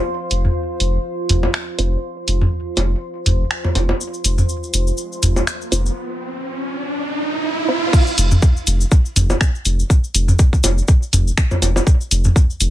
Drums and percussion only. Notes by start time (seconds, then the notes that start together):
0.31 open hi-hat
0.45 mid tom
0.80 open hi-hat
1.29 mid tom, open hi-hat
1.43 low bongo
1.54 finger snap
1.79 open hi-hat
2.28 open hi-hat
2.41 mid tom
2.77 open hi-hat, low bongo
3.26 mid tom, open hi-hat
3.51 finger snap
3.64 mid tom, low bongo
3.75 open hi-hat, low bongo
3.89 low bongo
4.01 cabasa
4.14 cabasa
4.24 open hi-hat, cabasa
4.38 mid tom, cabasa
4.49 cabasa
4.63 cabasa
4.74 open hi-hat, cabasa
4.87 cabasa
4.97 cabasa
5.12 cabasa
5.23 mid tom, open hi-hat, cabasa
5.36 low bongo, cabasa
5.47 finger snap, cabasa
5.61 cabasa
5.72 open hi-hat, cabasa
5.86 cabasa
7.93 kick, crash, cabasa
8.07 cabasa
8.18 open hi-hat, cabasa
8.31 mid tom, cabasa
8.42 kick, cabasa
8.57 cabasa
8.67 open hi-hat, cabasa
8.81 cabasa
8.91 kick, cabasa
9.05 cabasa
9.16 mid tom, open hi-hat, cabasa
9.30 low bongo, cabasa
9.41 finger snap, kick, cabasa
9.55 cabasa
9.65 open hi-hat, cabasa
9.79 cabasa
9.90 kick, cabasa
10.04 cabasa
10.14 open hi-hat, cabasa
10.28 mid tom, cabasa
10.39 kick, cabasa
10.53 kick, cabasa
10.63 open hi-hat, low bongo, cabasa
10.78 cabasa
10.88 kick, cabasa
11.03 cabasa
11.13 mid tom, open hi-hat, cabasa
11.28 cabasa
11.37 finger snap, kick, cabasa
11.51 mid tom, low bongo, cabasa
11.62 open hi-hat, low bongo, cabasa
11.76 low bongo, cabasa
11.87 kick, cabasa
12.01 cabasa
12.11 open hi-hat, cabasa
12.24 mid tom, cabasa
12.36 kick, cabasa
12.50 cabasa
12.60 open hi-hat, cabasa